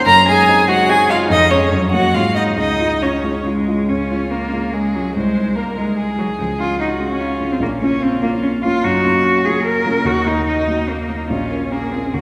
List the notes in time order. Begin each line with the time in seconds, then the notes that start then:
Already playing: F#2 A#3 C#4 D#4
0.06 F#2 A#4 A#5
0.27 G#3 D#4 G#4 G#5
0.48 C4 D#4
0.68 G#3 D#4 F#4 F#5
0.88 C4 D#4 G#4 G#5
1.09 G#3 D#4 F4 F5
1.30 F2 D#4 D#5
1.50 G#3 C#4 G#4 C#5
1.72 F#2
1.92 A#3 F#4 F#5
2.14 G#2 F4 F5
2.34 G#3 D#4 D#5
2.57 C#2 D#4 D#5
2.80 G#3 F4
3.02 C#4 F4 C#5
3.24 G#3 F4
3.46 G#3 C#4 F4
3.68 G#3 F4
3.89 C#2 C#4 F4
4.11 G#3 C#4 F4
4.31 A#3
4.53 G#3 C#4 F4
4.74 G#3 G#4
4.94 F#3 G#3 C#4 F4
5.15 C2 G#3 C5
5.36 G#3 D#4 G#4
5.56 A#3 A#4
5.77 G#3 D#4 G#4
5.99 G#4
6.18 F#3 G#3 D#4 G#4
6.39 C#2 F3
6.60 G#3 C#4 F4
6.80 D#4 F#4
6.99 G#3 C#4 F4
7.10 C#4
7.21 F4
7.40 G#3 C#4 F4
7.52 C4
7.60 A#1 A#3 C#4
7.81 A#3 C#4 F4
8.03 C4 F4
8.22 A#3 C#4 F4
8.43 C#4
8.63 A#3 C#4 F4
8.84 F#2 D#4 F#4
9.04 A#3 C#4 F4
9.24 C#4
9.45 A#3 C#4 F4 G#4
9.66 A#4
9.86 A#3 C#4 F4
10.05 D#2 D#4 F#4
10.26 A#3 D#4 F#4
10.47 D#4
10.68 A#3 D#4 F#4
10.89 A#3
11.09 A#3 D#4 F#4
11.28 A#1 C#4 F4
11.50 C#4 F4 A#4
11.71 A#3 G#4
11.92 C4 C#4 F4 A#4
12.14 D#2 A#3 F#4